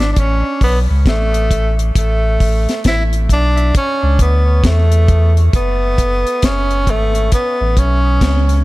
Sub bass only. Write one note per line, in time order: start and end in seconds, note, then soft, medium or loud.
0.00 0.14 G#1 medium
0.17 0.43 A1 loud
0.61 0.88 B1 medium
0.90 1.06 C#2 medium
1.06 1.91 A1 medium
1.96 2.38 A1 loud
2.41 2.67 A1 medium
2.86 3.28 A1 medium
3.30 3.72 B1 medium
4.03 4.18 C#2 medium
4.20 4.62 D2 medium
4.64 5.49 E2 loud
5.54 5.96 F#1 loud
5.99 6.25 F#1 medium
6.44 6.86 F#1 loud
6.87 7.30 G#1 medium
7.61 7.76 A1 medium
7.77 8.20 B1 medium
8.22 8.64 C#2 loud